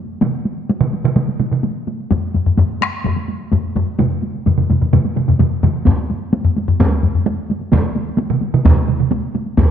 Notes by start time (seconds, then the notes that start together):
0.21 taiko mid, taiko high
0.33 taiko high
0.45 taiko high
0.57 taiko high
0.69 taiko high
0.81 taiko mid, taiko high
0.93 taiko high
1.04 taiko mid
1.16 taiko mid, taiko high
1.28 taiko high
1.40 taiko mid, taiko high
1.51 taiko mid, taiko high
1.63 taiko high
1.75 taiko high
1.87 taiko high
1.99 taiko high
2.11 taiko low-mid, taiko high
2.23 taiko high
2.34 taiko low-mid, taiko high
2.46 taiko low-mid, taiko high
2.57 taiko low-mid, taiko high
2.69 taiko high
2.81 taiko rim, taiko high
2.93 taiko high
3.04 taiko low-mid, taiko high
3.16 taiko high
3.28 taiko high
3.40 taiko high
3.52 taiko low-mid, taiko high
3.64 taiko high
3.75 taiko low-mid, taiko high
3.87 taiko high
3.99 taiko low-mid, taiko mid, taiko high
4.11 taiko high
4.22 taiko high
4.34 taiko high
4.46 taiko low-mid, taiko mid, taiko high
4.58 taiko low-mid, taiko mid, taiko high
4.70 taiko low-mid, taiko mid, taiko high
4.81 taiko low-mid, taiko mid, taiko high
4.93 taiko low-mid, taiko mid, taiko high
5.05 taiko high
5.16 taiko low-mid, taiko mid, taiko high
5.28 taiko low-mid, taiko mid, taiko high
5.39 taiko low-mid, taiko mid, taiko high
5.51 taiko high
5.63 taiko low-mid, taiko mid, taiko high
5.75 taiko high
5.86 taiko, taiko low-mid, taiko high
5.98 taiko high
6.10 taiko high
6.22 taiko high
6.33 taiko high
6.45 taiko low-mid, taiko high
6.56 taiko high
6.68 taiko low-mid, taiko high
6.80 taiko, taiko low-mid, taiko high
6.91 taiko high
7.03 taiko low-mid, taiko high
7.14 taiko low-mid, taiko high
7.26 taiko high
7.38 taiko high
7.50 taiko high
7.61 taiko high
7.72 taiko, taiko mid, taiko high
7.84 taiko high
7.95 taiko high
8.07 taiko high
8.18 taiko high
8.30 taiko mid, taiko high
8.41 taiko high
8.54 taiko mid, taiko high
8.65 taiko, taiko mid, taiko high
8.77 taiko high
8.88 taiko mid, taiko high
9.00 taiko mid, taiko high
9.12 taiko high
9.23 taiko high
9.35 taiko high
9.46 taiko high
9.57 taiko, taiko low-mid, taiko high